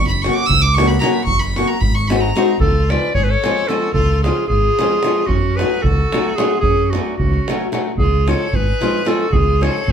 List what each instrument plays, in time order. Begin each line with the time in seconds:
Already playing: fingered electric bass F#1
0.07 violin B5, davul high
0.22 nylon-string guitar F#3 A#3 C#4 F#4, violin C#6, davul high
0.34 violin D6
0.46 fingered electric bass C#2, violin E6
0.51 davul low
0.62 violin D6
0.74 nylon-string guitar F#3 A#3, violin C#6
0.78 nylon-string guitar C#4 F#4, davul high
0.88 violin B5, davul high
0.99 nylon-string guitar F#3 A#3 C#4, violin A#5 B5, davul high
1.04 nylon-string guitar F#4
1.13 violin B5, davul high
1.24 fingered electric bass F#1, violin C#6, davul low
1.39 violin B5, davul high
1.56 nylon-string guitar F#3 A#3 C#4 F#4, violin C#6, davul high
1.68 violin A#5, davul high
1.81 fingered electric bass G#1, violin B5, davul low
1.95 violin C#6, davul high
2.08 nylon-string guitar G#3 C4 D#4 F#4, violin B5, davul high
2.20 violin A#5, davul high
2.36 nylon-string guitar G#3 C4 D#4 F#4, davul high
2.60 fingered electric bass C#2, violin F4, clarinet A4, davul low
2.89 nylon-string guitar F3 G#3 C#4 F4, violin B4, clarinet D5, davul high
3.15 fingered electric bass G#1, violin G#4, clarinet C#5, davul low
3.24 violin G#4, clarinet B4
3.29 violin A4, clarinet C#5
3.44 nylon-string guitar F3 G#3 C#4 F4, davul high
3.57 davul high
3.68 nylon-string guitar F3 G#3 C#4 F4, violin F#4, clarinet A4, davul high
3.82 davul high
3.93 fingered electric bass C#2, violin F4, clarinet A4, davul low
4.23 nylon-string guitar F3 G#3 C#4 F4, violin F4, clarinet G#4, davul high
4.48 fingered electric bass G#1, violin F4, clarinet G#4, davul low
4.79 nylon-string guitar F3 G#3 C#4 F4, davul high
4.91 davul high
5.03 nylon-string guitar F3 G#3 C#4 F4, davul high
5.17 davul high
5.27 fingered electric bass F#2, violin C#4, clarinet F#4, davul low
5.56 nylon-string guitar F#3 A3 C#4, violin G#4, clarinet B4, davul high
5.62 nylon-string guitar F#4
5.81 fingered electric bass C#2, violin F#4, clarinet A4, davul low
6.12 nylon-string guitar F#3 A3 C#4 F#4, davul high
6.25 davul high
6.35 nylon-string guitar F#3 A3 C#4, violin F4, clarinet G#4, davul high
6.40 nylon-string guitar F#4
6.51 davul high
6.60 fingered electric bass F#2, violin C#4, clarinet G#4, davul low
6.77 davul high
6.90 nylon-string guitar F#3, violin D4, clarinet F#4, davul high
6.95 nylon-string guitar A3 C#4 F#4
7.06 davul high
7.17 fingered electric bass C#2, violin C#4, clarinet F#4, davul low
7.34 davul high
7.48 nylon-string guitar F#3 A3 C#4 F#4, davul high
7.61 davul high
7.72 nylon-string guitar F#3 A3 C#4 F#4, davul high
7.97 fingered electric bass C#2, violin F4, clarinet G#4, davul low
8.27 nylon-string guitar F3 G#3 C#4 F4, violin A4, clarinet C#5, davul high
8.53 fingered electric bass G#1, violin G#4, clarinet B4, davul low
8.81 nylon-string guitar F3 G#3 C#4 F4, davul high
8.94 davul high
9.05 nylon-string guitar F3 G#3 C#4 F4, clarinet A4, davul high
9.10 violin F#4
9.20 davul high
9.32 fingered electric bass C#2, violin F4, clarinet G#4, davul low
9.61 nylon-string guitar F3 G#3 C#4 F4, clarinet C#5, davul high
9.65 violin A4
9.88 fingered electric bass G#1, davul low